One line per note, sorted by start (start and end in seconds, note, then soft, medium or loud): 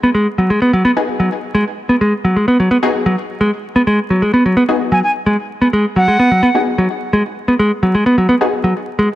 0.03 0.09 B3 medium
0.15 0.26 G#3 medium
0.38 0.50 F#3 medium
0.50 0.60 G#3 medium
0.62 0.71 B3 medium
0.73 0.82 F#3 medium
0.85 0.90 B3 medium
0.97 1.04 B3 medium
0.97 1.04 D#4 medium
0.97 1.04 F#4 medium
0.97 1.04 G#4 medium
1.20 1.29 F#3 medium
1.55 1.64 G#3 medium
1.89 1.95 B3 medium
2.01 2.12 G#3 medium
2.24 2.36 F#3 medium
2.36 2.47 G#3 medium
2.48 2.57 B3 medium
2.60 2.68 F#3 medium
2.71 2.76 B3 medium
2.83 2.90 B3 medium
2.83 2.90 D#4 medium
2.83 2.90 F#4 medium
2.83 2.90 G#4 medium
3.06 3.15 F#3 medium
3.41 3.50 G#3 medium
3.76 3.81 B3 medium
3.87 3.98 G#3 medium
4.10 4.22 F#3 medium
4.22 4.33 G#3 medium
4.34 4.43 B3 medium
4.46 4.54 F#3 medium
4.57 4.62 B3 medium
4.69 4.76 B3 medium
4.69 4.76 D#4 medium
4.69 4.76 F#4 medium
4.69 4.76 G#4 medium
4.92 5.01 F#3 medium
4.92 4.99 G#5 medium
5.04 5.11 G#5 medium
5.26 5.36 G#3 medium
5.61 5.67 B3 medium
5.73 5.84 G#3 medium
5.96 6.07 F#3 medium
5.96 6.62 F#5 medium
6.08 6.18 G#3 medium
6.19 6.29 B3 medium
6.31 6.40 F#3 medium
6.43 6.48 B3 medium
6.55 6.62 B3 medium
6.55 6.62 D#4 medium
6.55 6.62 F#4 medium
6.55 6.62 G#4 medium
6.78 6.87 F#3 medium
7.13 7.22 G#3 medium
7.48 7.53 B3 medium
7.59 7.71 G#3 medium
7.83 7.94 F#3 medium
7.95 8.05 G#3 medium
8.06 8.15 B3 medium
8.18 8.26 F#3 medium
8.29 8.34 B3 medium
8.41 8.48 B3 medium
8.41 8.48 D#4 medium
8.41 8.48 F#4 medium
8.41 8.48 G#4 medium
8.64 8.73 F#3 medium
8.99 9.08 G#3 medium